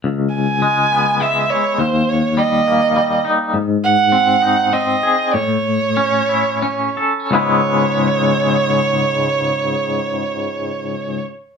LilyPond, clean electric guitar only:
\new Staff \with { instrumentName = "Clean electric guitar" } { \time 3/4 \key cis \minor \tempo 4 = 97 cis,4 gis8 b8 gis8 e'8 | dis,4 g8 ais8 g8 dis'8 | gis,4 bis8 dis'8 bis8 gis'8 | a,4 cis'8 e'8 cis'8 a'8 |
<cis, gis, cis gis b e'>2.~ | <cis, gis, cis gis b e'>2. | }